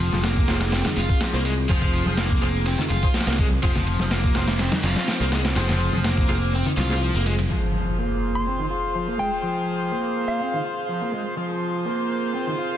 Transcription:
Already playing: F3 C4 F4 G#4
0.00 ride
0.13 F1 F4 G#4 C5, snare, high conga
0.24 A#3, snare, ride
0.37 kick
0.48 F1 F4 G#4 C5, snare, ride
0.61 snare, ride
0.72 C4, snare, ride
0.85 D#3, snare, ride, high conga, low conga
0.97 F1 F4, snare, ride
1.09 kick
1.21 F3, snare, ride
1.33 C2 A#3 F4 G#4 C5
1.45 G#3, ride
1.69 F1 F3 F4 G#4 C5, kick, ride
1.82 kick, low conga
1.93 ride
2.06 F1 F4 G#4 C5, high conga
2.17 A#3, snare, ride
2.30 kick
2.42 F1 F4 G#4 C5, ride
2.66 C4, ride
2.78 D#3, snare, low conga
2.90 F1 F4, ride, high conga
3.03 F4 G#4 C5, kick
3.14 F3, snare, ride
3.21 snare, ride
3.27 C2 A#3, snare, ride
3.33 snare, ride
3.38 G#3, kick, ride
3.51 high conga
3.63 F1 F3 F4 G#4 C5, kick, ride
3.75 snare, low conga
3.87 ride
3.99 F1 F4 G#4 C5, snare, high conga
4.11 A#3, snare, ride
4.24 kick
4.35 F1 F4 G#4 C5, snare, ride
4.48 snare, ride
4.59 C4, snare, ride
4.71 D#3, snare, ride, high conga, low conga
4.83 F1 F4, snare, ride
4.96 snare, ride
5.08 F3, snare, ride
5.20 C2 A#3 F4 G#4 C5
5.32 G#3, snare, ride
5.45 snare, ride
5.56 F1 F3 F4 G#4 C5, snare, ride
5.69 snare, ride, low conga
5.80 ride
5.93 F1 F4 G#4 C5, high conga, low conga
6.04 A#3, snare, ride
6.18 kick
6.29 F1 F4 G#4 C5, ride
6.53 C4
6.66 D#3, low conga
6.77 C2 F4, snare, ride, high conga
6.90 F4 G#4 C5, snare
7.02 F3
7.14 F1 A#3
7.26 G#3, ride
7.39 ride, high conga
7.50 F3 C4 F4 G#4 C5, impact
7.98 A#3
8.35 C6
8.47 C4
8.59 D#3
8.70 F4
8.95 F3
9.08 A#3
9.19 G#3 G5
9.43 F3
9.92 A#3
10.28 F5
10.40 C4
10.53 D#3
10.64 F4
10.89 F3
11.02 A#3
11.13 G#3
11.37 F3 F4 G#4 A#4 C5
11.85 A#3
12.34 C4
12.47 D#3
12.58 F4

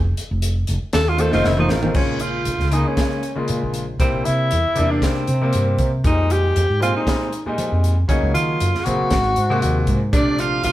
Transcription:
Already playing: F1
0.17 muted fretless electric bass stroke, closed hi-hat
0.31 F1
0.42 closed hi-hat
0.67 F1, closed hi-hat
0.82 muted fretless electric bass stroke
0.93 D#2 A4, snare, closed hi-hat
1.09 F4
1.17 D#3 A3 C4 F4 A4, closed hi-hat
1.31 F1 D#3 A3 C4 D#4 F4, snare
1.44 F1 E4, snare
1.57 D#3 A3 C4 D#4 F4, mid tom
1.69 A1 A#3, snare
1.82 D#3 A3 C4 F4, floor tom
1.94 A#1 C#3 G#3 A#3 C#4 F4, kick, crash
2.19 F4, closed hi-hat
2.45 A#1, closed hi-hat
2.60 C#2, snare
2.71 C#3 G#3 A#3 D#4 G#4, closed hi-hat
2.88 C#4
2.97 kick, snare, closed hi-hat
3.23 closed hi-hat
3.35 C#3 G#3 A#3 F4, muted fretless electric bass stroke
3.48 A#2, closed hi-hat
3.63 A#1
3.74 closed hi-hat
4.00 C3 G3 A#3 C4 E4, kick, closed hi-hat
4.14 A#1
4.25 C3 E4, closed hi-hat
4.51 E2, closed hi-hat
4.66 muted fretless electric bass stroke
4.75 E2 C3 G3 A#3 D4, closed hi-hat
4.91 D4
5.02 C4, kick, snare, closed hi-hat
5.27 C3, closed hi-hat
5.41 C3 G3 A#3 C4
5.53 G2, closed hi-hat
5.78 C3, kick, closed hi-hat
6.04 F2 A#2 G3 G#3 D#4, kick, closed hi-hat
6.30 G4, closed hi-hat
6.56 F2, closed hi-hat
6.70 G#2
6.80 A#2 G3 G#3 C4 F4, closed hi-hat
6.96 D#4
7.07 kick, snare, closed hi-hat
7.32 closed hi-hat
7.46 A#2 G3 G#3 D#4, muted fretless electric bass stroke
7.58 F3, closed hi-hat
7.72 F2
7.84 closed hi-hat
8.08 C#3 F#3 A#3 C#4 D#4, kick, closed hi-hat
8.23 C#2
8.34 D#3 F4, closed hi-hat
8.60 F#2, closed hi-hat
8.75 muted fretless electric bass stroke, snare
8.85 A#1 C#3 F#3 A#3 C4 F#4, closed hi-hat
9.11 G#1, kick, snare, closed hi-hat
9.36 G#2, closed hi-hat
9.50 C3 G#3 A#3 F#4
9.62 D#2, closed hi-hat
9.87 G#2, kick, closed hi-hat
10.13 A#1 C3 G3 A3 D4, kick, closed hi-hat
10.17 D5
10.38 F4 F5, closed hi-hat
10.64 A#1 F4 F5, closed hi-hat

